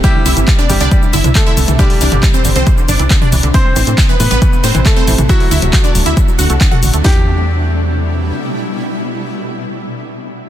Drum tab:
HH |x-oxx-oxx-oxx-ox|xooxx-oxx-oxx-ox|x-oxx-oxx-oxx-ox|xooxx-oxx-oxx-ox|
SH |x-xxxxxxxxxxx-xx|x-xxxxxxxxxxx-xx|x-xxxxxxxxxxx-xx|x-xxxxxxxxxxx-xx|
CP |----x-------x---|----x-------x---|----x-------x---|----x-------x---|
SD |----------------|----------------|----------------|----------------|
T2 |-----------o---o|---o---------o--|-----------o---o|---o---------o--|
BD |o---o---o---o---|o---o---o---o---|o---o---o---o---|o---o---o---o---|

HH |----------------|----------------|
SH |----------------|----------------|
CP |----------------|----------------|
SD |o---------------|----------------|
T2 |----------------|----------------|
BD |o---------------|----------------|